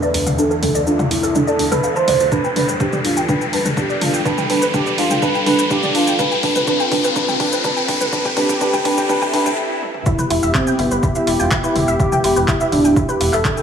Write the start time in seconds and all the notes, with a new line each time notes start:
Already playing: E2 D4 A4 E5 F5, riser
0.02 B4 D5, shaker
0.14 D2 D4, open hi-hat
0.27 D2 F5, mid tom, shaker
0.38 D4 A4, shaker
0.51 A4, shaker
0.62 D2 D4 A4, open hi-hat, mid tom
0.75 D2 D5, shaker
0.87 D4 F4, shaker
0.99 F5, mid tom, shaker
1.11 C2 D4 E4, open hi-hat
1.23 C2 A4, shaker
1.35 D4, mid tom, shaker
1.47 A4 D5, shaker
1.59 D2 D4, open hi-hat
1.72 D2 A4 B4, mid tom, shaker
1.83 F5, shaker
1.96 C5 A5, shaker
2.08 D2 D5, open hi-hat, mid tom
2.20 D2 F4, shaker
2.32 G3 D4 B4, kick, shaker
2.44 G5, shaker
2.56 G1 D4 B4, open hi-hat, mid tom
2.68 G1 B4, shaker
2.80 D4 G4, kick, shaker
2.93 D5, mid tom, shaker
3.04 A1 D4 F4, open hi-hat
3.17 A1 G5, shaker
3.29 D4 B4, kick, mid tom, shaker
3.41 G5, shaker
3.53 G1 D4 B4, open hi-hat
3.65 G1 B4, mid tom, shaker
3.77 D4 G4, kick, shaker
3.90 D5, shaker
4.01 G1 D4 F4, open hi-hat, mid tom
4.14 G1 G5, shaker
4.25 D4 B4, kick, shaker
4.38 G5, mid tom, shaker
4.49 G1 D4 B4, open hi-hat
4.62 G1 B4, shaker
4.74 D4 G4, kick, mid tom, shaker
4.86 D5, shaker
4.98 F1 D4 F4, open hi-hat
5.10 F1 G5, mid tom, shaker
5.22 D4 B4, kick, shaker
5.35 G5, shaker
5.46 G1 D4 B4, open hi-hat, mid tom
5.59 G1 B4, shaker
5.71 D4 G4, kick, shaker
5.83 D5, mid tom, shaker
5.95 G1 D4 F4, open hi-hat
6.07 G1 G5, shaker
6.19 C4 D4 F4 B4, kick, mid tom, shaker
6.31 G5, shaker
6.43 F1 D4 B4, kick, open hi-hat
6.56 F1 B4, mid tom, shaker
6.67 D4 B4, kick, shaker
6.80 G5, shaker
6.91 G1 D4 B4, kick, open hi-hat, mid tom
7.04 G1 B4, shaker
7.16 D4 B4, kick, shaker
7.28 G5, mid tom, shaker
7.40 F1 D4 B4, kick, open hi-hat
7.52 F1 B4, shaker
7.64 D4 B4, kick, mid tom, shaker
7.77 G5, shaker
7.88 F1 D4 B4, kick, open hi-hat
8.01 F1 B4, mid tom, shaker
8.13 D4 G4 B4, kick, shaker
8.25 G5, kick, shaker
8.37 F1 D4 B4, kick, open hi-hat, mid tom
8.49 F1 G5, kick, shaker
8.61 D4 B4, kick, shaker
8.73 G5, kick, mid tom, shaker
8.85 C2 D4 B4, kick, open hi-hat
8.98 C2 G5, kick, shaker
9.09 D4 B4, kick, mid tom, swell, shaker
9.22 G5, kick, shaker
9.33 F1 D4 B4, kick, open hi-hat
9.46 F1 G5, kick, mid tom, shaker
9.82 high tom
9.94 mid tom
10.06 E2 B3 E4 G4 E5, kick, shaker
10.19 B4 B5, mid tom, shaker
10.30 E1 E4 E5, open hi-hat
10.43 E1 E5 E6, shaker
10.55 C4 E4, kick, clap, shaker
10.67 G5 G6, shaker
10.79 G1 B3 E4 E5, open hi-hat, mid tom
10.91 G1 B4 B5, shaker
11.03 E4 E5, kick, shaker
11.15 E4 E5 E6, shaker
11.27 E1 E4 E5, open hi-hat
11.40 E1 F4 G5 G6, shaker
11.51 E4 E5, kick, clap, shaker
11.64 E4 B4 B5, shaker
11.76 E1 E4 E5, open hi-hat, mid tom
11.88 E1 E5 E6, shaker
12.00 E4 G4 E5, kick, shaker
12.12 G5 G6, mid tom, shaker
12.24 E1 E4 G4 E5, open hi-hat
12.36 E1 B4 B5, shaker
12.48 E4 E5, kick, clap, shaker
12.61 E5 E6, shaker
12.72 D1 D4 E4 E5, open hi-hat, mid tom
12.85 D1 G5 G6, shaker
12.96 E4 E5, kick, shaker
13.09 G4 B4 B5, shaker
13.21 E1 E4 E5, open hi-hat
13.33 E1 A4 E5 E6, clap, shaker
13.45 E4, kick, clap, shaker
13.57 A4 G5 G6, shaker